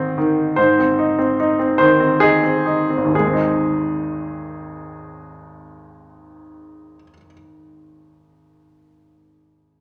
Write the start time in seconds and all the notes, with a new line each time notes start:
Already playing: G#2 D#3 C4 D#4 C5
0.18 D#3
0.56 G#2 C5
0.79 C4
0.99 D#4
1.19 C4
1.40 D#4
1.59 C4
1.78 D#3 C5
2.00 C4
2.20 D#4 G#4
2.43 C4
2.66 D#4
2.90 C4
2.97 G#1
3.05 D#2
3.12 D#3 G#4
3.19 G#3
3.26 C4
3.33 D#4